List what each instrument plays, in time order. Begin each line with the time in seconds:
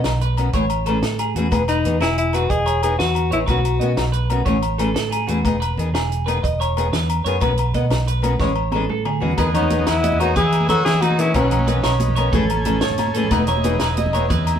Already playing: clean electric guitar D#5
0.04 fingered electric bass B1, snare, closed hi-hat, low agogo
0.21 clean electric guitar B4, closed hi-hat
0.37 steel-string acoustic guitar D#3 B3 C#4 F#4, closed hi-hat, low agogo
0.53 fingered electric bass A1, steel-string acoustic guitar E3 A3 G#4, clean electric guitar C#5, muted steel-string acoustic guitar stroke, kick, closed hi-hat
0.70 closed hi-hat, low agogo
0.86 steel-string acoustic guitar E3 A3 C#4 G#4, clean electric guitar A4, closed hi-hat, low agogo
1.02 fingered electric bass A2, clean electric guitar A4, snare, closed hi-hat
1.19 clean electric guitar G#4, closed hi-hat, low agogo
1.35 fingered electric bass E2, steel-string acoustic guitar E3 A3 C#4 G#4, clean electric guitar F#4, closed hi-hat
1.51 fingered electric bass E1, steel-string acoustic guitar E3 B3 G#4, muted steel-string acoustic guitar stroke, kick, closed hi-hat, low agogo
1.68 alto saxophone D#4, clean electric guitar B4, closed hi-hat, low agogo
1.84 fingered electric bass E2, steel-string acoustic guitar E3 B3 D#4 G#4, closed hi-hat
2.00 fingered electric bass E1, alto saxophone E4, clean electric guitar G#4, snare, closed hi-hat, low agogo
2.18 alto saxophone E4, closed hi-hat
2.33 steel-string acoustic guitar E3 B3 D#4 G#4, alto saxophone F#4, clean electric guitar B4, closed hi-hat, low agogo
2.50 fingered electric bass E1, alto saxophone G#4, clean electric guitar D#5, kick, closed hi-hat
2.66 clean electric guitar C#5, closed hi-hat, low agogo
2.83 steel-string acoustic guitar E3 B3 D#4 G#4, alto saxophone G#4, closed hi-hat, low agogo
2.99 fingered electric bass E2, alto saxophone F#4, clean electric guitar B4, snare, closed hi-hat
3.15 closed hi-hat, low agogo
3.31 fingered electric bass A1, steel-string acoustic guitar E3 B3 D#4 G#4, alto saxophone E4, clean electric guitar C#5, closed hi-hat
3.46 fingered electric bass B1, steel-string acoustic guitar D#3 B3 C#4 F#4, alto saxophone F#4, clean electric guitar B4, kick, closed hi-hat, low agogo
3.65 closed hi-hat, low agogo
3.80 fingered electric bass B2, steel-string acoustic guitar D#3 B3 C#4 F#4, clean electric guitar D#5, closed hi-hat
3.96 fingered electric bass B1, snare, closed hi-hat, low agogo
4.12 clean electric guitar B4, closed hi-hat
4.30 steel-string acoustic guitar D#3 B3 C#4 F#4, closed hi-hat, low agogo
4.45 fingered electric bass A1, steel-string acoustic guitar E3 A3 C#4 G#4, clean electric guitar C#5, kick, closed hi-hat
4.62 closed hi-hat, low agogo
4.78 steel-string acoustic guitar E3 A3 C#4 G#4, clean electric guitar A4, closed hi-hat, low agogo
4.94 fingered electric bass A2, clean electric guitar A4, snare, closed hi-hat
5.11 clean electric guitar G#4, closed hi-hat, low agogo
5.27 fingered electric bass E2, steel-string acoustic guitar E3 A3 C#4 G#4, clean electric guitar F#4, closed hi-hat
5.44 fingered electric bass E1, steel-string acoustic guitar B3 D#4 G#4, muted steel-string acoustic guitar stroke, kick, closed hi-hat, low agogo
5.60 clean electric guitar B4, closed hi-hat, low agogo
5.77 fingered electric bass E2, steel-string acoustic guitar D#3 D#4 G#4, closed hi-hat
5.93 fingered electric bass E1, clean electric guitar G#4, snare, closed hi-hat, low agogo
6.12 closed hi-hat
6.26 steel-string acoustic guitar D#3 B3 D#4 G#4, clean electric guitar B4, closed hi-hat, low agogo
6.43 fingered electric bass E1, clean electric guitar D#5, kick, closed hi-hat
6.60 clean electric guitar C#5, closed hi-hat, low agogo
6.77 steel-string acoustic guitar D#3 B3 D#4 G#4, closed hi-hat, low agogo
6.92 fingered electric bass E2, clean electric guitar B4, snare, closed hi-hat
7.09 closed hi-hat, low agogo
7.24 fingered electric bass F#2, steel-string acoustic guitar D#3 B3 D#4 G#4, clean electric guitar C#5, closed hi-hat
7.40 fingered electric bass B1, steel-string acoustic guitar D#3 B3 C#4 F#4, clean electric guitar B4, kick, closed hi-hat, low agogo
7.57 closed hi-hat, low agogo
7.74 fingered electric bass B2, steel-string acoustic guitar D#3 B3 F#4, clean electric guitar D#5, muted steel-string acoustic guitar stroke, kick, closed hi-hat
7.90 fingered electric bass B1, snare, closed hi-hat, low agogo
8.07 clean electric guitar B4, closed hi-hat
8.22 steel-string acoustic guitar D#3 B3 C#4 F#4, closed hi-hat, low agogo
8.39 fingered electric bass A1, steel-string acoustic guitar E3 G#3 C#4 G#4, clean electric guitar C#5, kick, snare
8.56 low agogo
8.72 steel-string acoustic guitar E3 G#3 C#4, clean electric guitar A4, high tom, low agogo
8.76 steel-string acoustic guitar G#4
8.89 fingered electric bass A2, clean electric guitar A4, mid tom
9.05 clean electric guitar G#4, mid tom, low agogo
9.20 fingered electric bass E2, steel-string acoustic guitar E3 G#3 C#4 G#4, clean electric guitar F#4, floor tom
9.38 fingered electric bass E2, steel-string acoustic guitar D#3 B3 D#4 G#4, transistor combo organ B3 G#4 D#5, clean electric guitar B4, kick, closed hi-hat, muted conga, low agogo
9.54 trumpet B3, alto saxophone D#4, clean electric guitar C#5, closed hi-hat, low conga, low agogo
9.62 high conga
9.70 steel-string acoustic guitar D#3 B3 D#4 G#4, closed hi-hat, muted conga, low conga
9.79 low conga
9.87 fingered electric bass E2, trumpet B3, alto saxophone E4, clean electric guitar B4, snare, closed hi-hat, low agogo
10.03 clean electric guitar D#5, closed hi-hat, muted conga
10.12 high conga, low conga
10.19 steel-string acoustic guitar D#3 B3 D#4 G#4, trumpet D#4, alto saxophone F#4, clean electric guitar C#5, closed hi-hat, low agogo
10.36 fingered electric bass E3, trumpet E4, alto saxophone G#4, clean electric guitar B4, kick, closed hi-hat, muted conga, low conga
10.52 closed hi-hat, low agogo
10.61 high conga, low conga
10.68 steel-string acoustic guitar D#3 B3 D#4 G#4, trumpet F#4, alto saxophone A4, clean electric guitar C#5, closed hi-hat, muted conga, low conga, low agogo
10.85 fingered electric bass E3, trumpet E4, alto saxophone G#4, snare, closed hi-hat
10.94 low conga
11.02 trumpet D#4, alto saxophone F#4, clean electric guitar B4, closed hi-hat, muted conga, low agogo
11.11 high conga
11.18 steel-string acoustic guitar D#3 B3 D#4 G#4, trumpet C#4, alto saxophone E4, closed hi-hat
11.34 fingered electric bass B1, steel-string acoustic guitar D#3 B3 C#4 F#4, trumpet F#3, alto saxophone C#4, transistor combo organ C#4 D#4 B4, kick, closed hi-hat, muted conga, low agogo
11.51 closed hi-hat, low conga, low agogo
11.59 high conga
11.67 steel-string acoustic guitar D#3 B3 C#4 F#4, clean electric guitar B4, closed hi-hat, muted conga, low conga
11.76 low conga
11.84 fingered electric bass B1, clean electric guitar C#5, snare, closed hi-hat, low agogo
12.00 closed hi-hat, muted conga
12.08 high conga, low conga
12.16 steel-string acoustic guitar D#3 B3 C#4, clean electric guitar C#5, closed hi-hat, low agogo
12.32 fingered electric bass A1, steel-string acoustic guitar E3 A3 C#4 G#4, clean electric guitar A4, transistor combo organ A4 G#5, kick, closed hi-hat, muted conga, low conga
12.50 closed hi-hat, low agogo
12.57 high conga, low conga
12.65 steel-string acoustic guitar E3 A3 C#4 G#4, clean electric guitar A4, closed hi-hat, muted conga, low conga, low agogo
12.81 fingered electric bass A2, clean electric guitar C#5, snare, closed hi-hat
12.91 low conga
12.98 snare, closed hi-hat, muted conga, low agogo
13.07 high conga
13.14 steel-string acoustic guitar E3 A3 C#4 G#4, clean electric guitar A4, closed hi-hat
13.24 low conga
13.31 fingered electric bass E1, steel-string acoustic guitar E3 B3 D#4, transistor combo organ D#4 E4 G#4, clean electric guitar B4, muted steel-string acoustic guitar stroke, kick, closed hi-hat, muted conga, low agogo
13.47 clean electric guitar C#5, closed hi-hat, low conga, low agogo
13.57 high conga
13.63 steel-string acoustic guitar E3 B3 D#4 G#4, closed hi-hat, muted conga, low conga
13.74 low conga
13.80 fingered electric bass E1, clean electric guitar B4, snare, closed hi-hat, low agogo
13.97 clean electric guitar D#5, closed hi-hat, muted conga
14.06 high conga, low conga
14.13 steel-string acoustic guitar E3 B3 D#4 G#4, clean electric guitar C#5, closed hi-hat, low agogo
14.30 fingered electric bass E2, clean electric guitar B4, kick, closed hi-hat, muted conga, low conga
14.47 closed hi-hat, low agogo
14.56 high conga, low conga